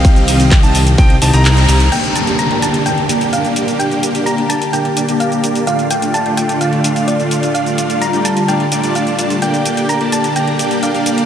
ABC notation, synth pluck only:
X:1
M:4/4
L:1/8
Q:1/4=128
K:Gm
V:1 name="Synth pluck"
g6 z2 | g a b a g2 f z | g2 b a g2 f z | f g a g f2 d z |
f2 b a g2 f z | g2 b a g2 f z |]